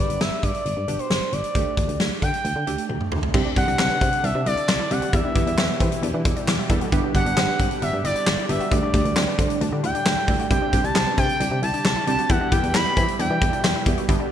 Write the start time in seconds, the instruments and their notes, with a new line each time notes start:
Already playing: analog polysynth B3 D4 G4
0.00 analog synth lead D5
0.10 fm bass G1, closed hi-hat
0.21 fm bass G1, analog synth lead E5, snare
0.43 fm bass G2, analog synth lead D5, kick, closed hi-hat
0.55 closed hi-hat
0.66 fm bass G1, closed hi-hat
0.77 fm bass G2
0.88 fm bass G1, analog polysynth B2 D4 G4, closed hi-hat
0.99 analog synth lead C5, closed hi-hat
1.10 fm bass G1, snare
1.33 fm bass G1, analog synth lead D5, closed hi-hat
1.44 closed hi-hat
1.55 fm bass D2, analog polysynth A3 D4 G4, kick, closed hi-hat
1.77 fm bass D2, kick, closed hi-hat
1.89 fm bass D2, closed hi-hat
2.00 fm bass D2, snare
2.22 fm bass D3, analog synth lead G5, kick, closed hi-hat
2.34 closed hi-hat
2.45 fm bass D2, closed hi-hat
2.56 fm bass D3
2.67 fm bass D2, analog polysynth A3 D4 G4, closed hi-hat
2.78 closed hi-hat
2.89 fm bass D2, high tom
3.01 mid tom
3.12 fm bass D2, mid tom
3.23 floor tom
3.34 fm bass C2, analog synth pad C3 D3 G3 D4 G4, analog polysynth C4 D4 G4, synth arpeggio sound E4, kick, crash
3.45 synth arpeggio sound D4
3.56 fm bass C2, analog polysynth C4 D4 G4, analog synth lead F#5, kick, closed hi-hat
3.68 fm bass C2, synth arpeggio sound D4, closed hi-hat
3.79 fm bass C2, synth arpeggio sound C4, snare, clap
3.90 synth arpeggio sound B3
4.01 fm bass C3, synth arpeggio sound C4, kick, closed hi-hat
4.13 closed hi-hat
4.24 fm bass C2, synth arpeggio sound D4, analog synth lead E5, closed hi-hat
4.35 fm bass C3, synth arpeggio sound D4
4.46 fm bass C2, synth arpeggio sound E4, analog synth lead D5, closed hi-hat
4.57 synth arpeggio sound D4, closed hi-hat
4.68 fm bass C2, snare, clap
4.80 synth arpeggio sound E4
4.91 fm bass C2, analog polysynth C4 D4 G4, synth arpeggio sound D4, analog synth lead F#5, closed hi-hat
5.02 synth arpeggio sound F#4, closed hi-hat
5.13 fm bass E2, analog synth pad B2 E3 E4, analog polysynth B3 E4 G4, synth arpeggio sound E4, analog synth lead E5, kick, closed hi-hat
5.24 synth arpeggio sound D4
5.36 fm bass E2, analog polysynth B3 E4 G4, kick, closed hi-hat
5.47 fm bass E2, synth arpeggio sound D4, closed hi-hat
5.58 fm bass E2, synth arpeggio sound C4, snare, clap
5.69 synth arpeggio sound B3
5.80 fm bass E3, synth arpeggio sound C4, kick, closed hi-hat
5.92 closed hi-hat
6.03 fm bass E2, synth arpeggio sound D4, closed hi-hat
6.14 fm bass E3, synth arpeggio sound D4
6.25 fm bass E2, synth arpeggio sound E4, kick, closed hi-hat
6.36 synth arpeggio sound D4, closed hi-hat
6.48 fm bass E2, snare, clap
6.59 synth arpeggio sound E4
6.70 fm bass E2, analog polysynth B3 E4 A4, synth arpeggio sound D4, kick, closed hi-hat
6.81 synth arpeggio sound F#4, closed hi-hat
6.92 fm bass G1, analog synth pad D3 D4, analog polysynth B3 D4 G4, synth arpeggio sound E4, kick, closed hi-hat
7.04 synth arpeggio sound D4
7.15 fm bass G1, analog polysynth B3 D4 G4, analog synth lead F#5, kick, closed hi-hat
7.26 fm bass G1, synth arpeggio sound D4, closed hi-hat
7.37 fm bass G1, synth arpeggio sound C4, snare, clap
7.48 synth arpeggio sound B3
7.60 fm bass G2, synth arpeggio sound C4, kick, closed hi-hat
7.71 closed hi-hat
7.82 fm bass G1, synth arpeggio sound D4, analog synth lead E5, closed hi-hat
7.93 fm bass G2, synth arpeggio sound D4
8.04 fm bass G1, synth arpeggio sound E4, analog synth lead D5, closed hi-hat
8.16 synth arpeggio sound D4, closed hi-hat
8.27 fm bass G1, snare, clap
8.38 synth arpeggio sound E4
8.49 fm bass G1, analog polysynth B3 D4 G4, synth arpeggio sound D4, analog synth lead E5, closed hi-hat
8.60 synth arpeggio sound F#4, closed hi-hat
8.71 fm bass D2, analog synth pad A2, analog polysynth A3 D4 G4, synth arpeggio sound E4, analog synth lead D5, kick, closed hi-hat
8.83 synth arpeggio sound D4
8.94 fm bass D2, analog polysynth A3 D4 G4, kick, closed hi-hat
9.05 fm bass D2, synth arpeggio sound D4, closed hi-hat
9.16 fm bass D2, synth arpeggio sound C4, snare, clap
9.28 synth arpeggio sound B3
9.39 fm bass D3, synth arpeggio sound C4, kick, closed hi-hat
9.50 closed hi-hat
9.61 fm bass D2, synth arpeggio sound D4, closed hi-hat
9.72 fm bass D3, synth arpeggio sound D4
9.84 fm bass D2, synth arpeggio sound E4, analog synth lead G5, closed hi-hat
9.95 synth arpeggio sound D4, closed hi-hat
10.06 fm bass D2, snare, clap
10.17 synth arpeggio sound E4
10.28 fm bass D2, analog polysynth A3 D4 E4, synth arpeggio sound D4, kick, open hi-hat
10.39 synth arpeggio sound F#4, closed hi-hat
10.51 fm bass C2, analog synth pad C3 G4, analog polysynth C4 D4 G4, synth arpeggio sound E4, analog synth lead G5, kick, closed hi-hat
10.62 synth arpeggio sound D4
10.73 fm bass C2, analog polysynth C4 D4 G4, kick, closed hi-hat
10.84 fm bass C2, synth arpeggio sound D4, analog synth lead A5, closed hi-hat
10.95 fm bass C2, synth arpeggio sound C4, snare, clap
11.07 synth arpeggio sound B3
11.18 fm bass C3, synth arpeggio sound C4, analog synth lead G5, kick, closed hi-hat
11.29 closed hi-hat
11.40 fm bass C2, synth arpeggio sound D4, closed hi-hat
11.51 fm bass C3, synth arpeggio sound D4
11.63 fm bass C2, synth arpeggio sound E4, analog synth lead A5, closed hi-hat
11.74 synth arpeggio sound D4, closed hi-hat
11.85 fm bass C2, analog synth lead A5, snare, clap
11.96 synth arpeggio sound E4
12.07 fm bass C2, analog polysynth C4 D4 G4, synth arpeggio sound D4, analog synth lead A5, closed hi-hat
12.18 synth arpeggio sound F#4, closed hi-hat
12.30 fm bass E2, analog synth pad B2 E3 G3 E4, analog polysynth B3 E4 G4, synth arpeggio sound E4, analog synth lead F#5, kick, closed hi-hat
12.41 synth arpeggio sound D4
12.52 fm bass E2, analog polysynth B3 E4 G4, analog synth lead G5, kick, closed hi-hat
12.63 fm bass E2, synth arpeggio sound D4, closed hi-hat
12.74 fm bass E2, synth arpeggio sound C4, analog synth lead B5, snare, clap
12.86 synth arpeggio sound B3
12.97 fm bass E3, synth arpeggio sound C4, kick, closed hi-hat
13.08 closed hi-hat
13.19 fm bass E2, synth arpeggio sound D4, analog synth lead G5, closed hi-hat
13.30 fm bass E3, synth arpeggio sound D4
13.42 fm bass E2, synth arpeggio sound E4, kick, closed hi-hat
13.53 synth arpeggio sound D4, closed hi-hat
13.64 fm bass E2, snare, clap
13.75 synth arpeggio sound E4
13.86 fm bass E2, analog polysynth B3 E4 G4, synth arpeggio sound D4, kick, closed hi-hat
13.98 synth arpeggio sound F#4, closed hi-hat
14.09 fm bass G1, analog synth pad D3 D4, analog polysynth B3 D4 G4, synth arpeggio sound E4, kick, closed hi-hat
14.20 synth arpeggio sound D4